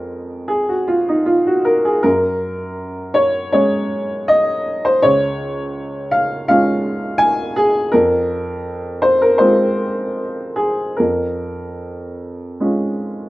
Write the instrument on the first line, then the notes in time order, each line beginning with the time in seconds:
upright piano
Already playing: F2 G#3 C#4 F4 A#4
0.48 G#4
0.69 F#4
0.88 F4
1.08 D#4
1.26 F4
1.47 F#4
1.65 A#4
1.85 G#4
2.03 F#2 A#4
3.14 C#5
3.52 G#3 C#4 G#4 C#5
4.28 D#5
4.85 C5
5.02 C#2 C#5
6.11 F5
6.48 G#3 C#4 F4 F5
7.18 G#5
7.56 G#4
7.92 F2 A#4
9.02 C5
9.22 A#4
9.38 G#3 C4 F4 C5
10.56 G#4
10.97 F2 A#4
12.60 G#3 C#4 F4